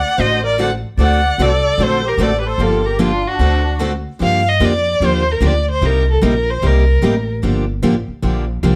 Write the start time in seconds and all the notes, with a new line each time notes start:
Already playing: D5 F#5
0.17 A1 D3 A3 C4 F#4 A4 C5 D#5
0.43 A#4 D5
0.58 D3 A3 C4 F#4 A4 D5 F#5
0.97 D2 D3 A3 C4 F#4 A4 D5
1.02 F#5
1.38 C2 D3 A3 C4 F#4 A4 D5
1.78 A#1 D3 A3 C4 F#4 A4
1.83 C5
2.05 G4 A#4
2.17 A1 D3 A3 C4 F#4 A4
2.23 D5
2.39 G4 B4
2.45 A4 C5
2.58 G1 D3 F3 A#3 D4 F4 G4 A4
2.85 G4 A#4
2.99 D3 F3 A#3 D4 F4 G4
3.26 D4 F#4
3.39 D2 D3 A3 C4 F#4 A4
3.80 D3 A3 C4 F#4 A4
4.20 G2 D3 F3 A#3 D4 G4 F5
4.49 D#5
4.60 F2 D3 F3 A#3 D4 G4
4.65 D5
5.00 D#2 D3 F3 A#3 D4 G4
5.06 C5
5.32 A#4
5.41 D2 D3 F3 A#3 D4 G4
5.46 D5
5.71 C5
5.82 C2 C3 G3 A#3 D#4 G4 A#4
6.11 A4
6.21 A#1 C3 G3 A#3 D#4 G4 A#4
6.50 C5
6.62 C2 C3 G3 A#3 D#4 G4
6.66 A#4
7.03 A1 C3 G3 A#3 D#4 G4
7.43 G1 D3 F3 A#3 D4 G4
7.82 A1 D3 F3 A#3 D4 G4
8.08 muted upright bass stroke
8.22 A#1 D3 F3 A#3 D4 G4
8.63 C2 D3 F3 A#3 D4 G4